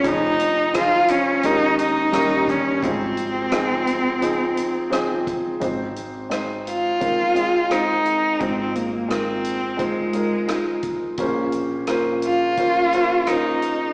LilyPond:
<<
  \new Staff \with { instrumentName = "Cello" } { \time 4/4 \key aes \major \tempo 4 = 86 ees'4 f'8 des'8 ees'8 ees'4 des'8 | c'2.~ c'8 r8 | r4. f'4. ees'4 | c'16 c'16 bes8 c'4 aes4. r8 |
r4. f'4. ees'4 | }
  \new Staff \with { instrumentName = "Felt piano" } { \time 4/4 \key aes \major <f c' ees' aes'>4 <f ees' aes' c''>4 <aes des' ees' bes'>4 <g des' ees' bes'>4 | <f c' ees' aes'>4 <f c' ees' aes'>4 <f c' ees' aes'>4 <f c' ees' aes'>4 | <aes c' ees' c''>4 <aes c' ees' c''>4 <aes c' ees' bes'>8 <aes c' ees' aes'>8 <aes c' ees' c''>4 | <aes ees' f' c''>4 <aes ees' f' bes'>4 <aes ees' f' c''>8 <aes ees' f' bes'>8 <aes ees' f' ees''>4 |
<bes des' f' c''>4 <bes des' f' c''>4 <bes des' f' c''>8 <bes des' f' c''>8 <bes des' f' c''>4 | }
  \new Staff \with { instrumentName = "Felt piano" } { \clef bass \time 4/4 \key aes \major <f,, f,>2 <ees, ees>4 <ees, ees>4 | <aes,, aes,>1 | <aes,, aes,>1 | <aes,, aes,>1 |
<bes,, bes,>1 | }
  \new Staff \with { instrumentName = "Upright bass" } { \clef bass \time 4/4 \key aes \major f,,2 ees,4 ees,4 | aes,,1 | aes,,1 | aes,,1 |
bes,,1 | }
  \new DrumStaff \with { instrumentName = "Drums" } \drummode { \time 4/4 <hh bd>8 hh8 <hh ss>8 hh8 hh8 hh8 <hh ss>8 <hh bd>8 | <hh bd>8 hh8 <hh ss>8 hh8 hh8 hh8 <hh ss>8 <hh bd>8 | <hh bd>8 hh8 <hh ss>8 hh8 <hh bd>8 hh8 <hh ss>8 hh8 | <hh bd>8 hh8 <hh ss>8 hh8 <hh bd>8 hh8 <hh ss>8 <hh bd>8 |
<hh bd>8 hh8 <hh ss>8 hh8 <hh bd>8 hh8 <hh ss>8 hh8 | }
>>